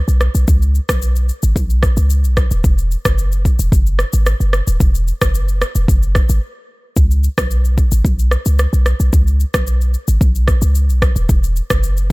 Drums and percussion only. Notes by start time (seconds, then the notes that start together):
0.08 shaker
0.21 cross-stick, shaker
0.35 shaker
0.48 kick, shaker
0.62 shaker
0.75 shaker
0.89 kick, cross-stick, shaker
1.02 shaker
1.16 shaker
1.29 shaker
1.43 shaker
1.56 kick, shaker
1.70 shaker
1.83 kick, cross-stick, shaker
1.97 shaker
2.10 shaker
2.24 shaker
2.37 kick, cross-stick, shaker
2.51 shaker
2.64 kick, shaker
2.78 shaker
2.91 shaker
3.05 kick, cross-stick, shaker
3.18 shaker
3.32 shaker
3.45 kick, shaker
3.59 shaker
3.72 kick, shaker
3.86 shaker
3.99 cross-stick, shaker
4.13 shaker
4.26 cross-stick, shaker
4.41 shaker
4.53 cross-stick, shaker
4.67 shaker
4.80 kick, shaker
4.95 shaker
5.07 shaker
5.21 kick, cross-stick, shaker
5.35 shaker
5.48 shaker
5.61 cross-stick, shaker
5.75 shaker
5.88 kick, shaker
6.03 shaker
6.15 kick, cross-stick, shaker
6.29 shaker
6.96 kick, shaker
7.11 shaker
7.24 shaker
7.38 kick, cross-stick, shaker
7.51 shaker
7.65 shaker
7.78 kick, shaker
7.92 shaker
8.05 kick, shaker
8.19 shaker
8.31 cross-stick, shaker
8.46 shaker
8.59 cross-stick, shaker
8.73 shaker
8.86 cross-stick, shaker
9.00 shaker
9.13 kick, shaker
9.27 shaker
9.40 shaker
9.54 kick, cross-stick, shaker
9.67 shaker
9.81 shaker
9.94 shaker
10.08 shaker
10.21 kick, shaker
10.35 shaker
10.48 kick, cross-stick, shaker
10.62 shaker
10.75 shaker
10.89 shaker
11.02 kick, cross-stick, shaker
11.16 shaker
11.29 kick, shaker
11.44 shaker
11.56 shaker
11.70 kick, cross-stick, shaker
11.83 shaker
11.97 shaker